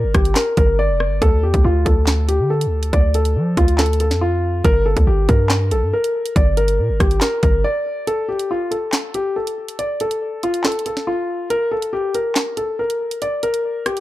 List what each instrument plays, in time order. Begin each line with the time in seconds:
Already playing: grand piano A#4
0.04 808-style bass G1
0.14 808-style bass G1, grand piano G4, kick, cross-stick, closed hi-hat
0.25 closed hi-hat
0.35 grand piano A#4, snare, clap, closed hi-hat
0.57 808-style bass G1, grand piano A#4, kick, closed hi-hat
0.79 grand piano D5
0.89 808-style bass F1
1.00 cross-stick
1.06 808-style bass G1
1.22 808-style bass D2, grand piano A4, kick, closed hi-hat
1.43 808-style bass E2, grand piano G4
1.54 808-style bass D2, kick, closed hi-hat
1.64 808-style bass D2, grand piano F4
1.85 808-style bass D2, grand piano A4, kick, closed hi-hat
2.07 snare, clap, closed hi-hat
2.29 grand piano G4, closed hi-hat
2.39 808-style bass D3
2.50 grand piano A4
2.61 closed hi-hat
2.66 808-style bass D2
2.83 closed hi-hat
2.93 808-style bass D2, grand piano D5, kick, closed hi-hat
3.14 grand piano A4, closed hi-hat
3.25 closed hi-hat
3.36 808-style bass F3
3.57 808-style bass D2, grand piano F4, kick, closed hi-hat
3.68 closed hi-hat
3.78 grand piano A4, snare, clap, closed hi-hat
3.86 closed hi-hat
3.93 closed hi-hat
4.00 grand piano A4, closed hi-hat
4.11 808-style bass F2, snare
4.21 grand piano F4
4.65 808-style bass G1, grand piano A#4, kick, closed hi-hat
4.86 grand piano A4
4.97 808-style bass D2, kick, closed hi-hat
5.07 808-style bass G1, grand piano G4
5.29 808-style bass G2, grand piano A#4, kick, closed hi-hat
5.50 snare, clap, closed hi-hat
5.71 808-style bass A#1, grand piano A4, closed hi-hat
5.82 808-style bass G2
5.93 grand piano A#4
6.04 closed hi-hat
6.26 closed hi-hat
6.36 808-style bass G1, grand piano D5, kick, closed hi-hat
6.57 grand piano A#4, closed hi-hat
6.68 closed hi-hat
6.79 808-style bass A#2
6.89 808-style bass G1
7.00 808-style bass G1, grand piano G4, kick, cross-stick, closed hi-hat
7.11 closed hi-hat
7.21 grand piano A#4, snare, clap, closed hi-hat
7.43 808-style bass G1, grand piano A#4, kick, closed hi-hat
7.64 grand piano D5
8.07 grand piano A4, closed hi-hat
8.29 grand piano G4
8.39 closed hi-hat
8.51 grand piano F4
8.71 grand piano A4, closed hi-hat
8.93 snare, clap, closed hi-hat
9.14 grand piano G4, closed hi-hat
9.36 grand piano A4
9.47 closed hi-hat
9.68 closed hi-hat
9.79 grand piano D5, closed hi-hat
10.00 grand piano A4, closed hi-hat
10.11 closed hi-hat
10.43 grand piano F4, closed hi-hat
10.54 closed hi-hat
10.64 grand piano A4, snare, clap, closed hi-hat
10.72 closed hi-hat
10.79 closed hi-hat
10.86 grand piano A4, closed hi-hat
10.97 snare
11.07 grand piano F4
11.50 grand piano A#4, closed hi-hat
11.72 grand piano A4
11.82 closed hi-hat
11.93 grand piano G4
12.15 grand piano A#4, closed hi-hat
12.35 snare, clap, closed hi-hat
12.57 grand piano A4, closed hi-hat
12.79 grand piano A#4
12.90 closed hi-hat
13.11 closed hi-hat
13.22 grand piano D5, closed hi-hat
13.43 grand piano A#4, closed hi-hat
13.54 closed hi-hat
13.86 grand piano G4, cross-stick, closed hi-hat
13.97 closed hi-hat